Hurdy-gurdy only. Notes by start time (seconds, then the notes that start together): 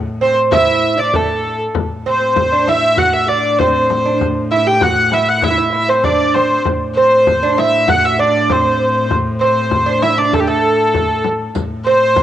0.22 C5
0.52 E5
0.99 D5
1.15 A4
2.09 C5
2.69 E5
2.98 F#5
3.13 E5
3.28 D5
3.59 C5
4.52 E5
4.67 G5
4.83 F#5
5.14 E5
5.29 F#5
5.44 E5
5.75 E5
5.89 C5
6.04 D5
6.34 C5
6.96 C5
7.59 E5
7.90 F#5
8.05 E5
8.20 D5
8.52 C5
9.41 C5
10.03 E5
10.18 D5
10.34 A4
10.40 G4
10.48 A4
11.85 C5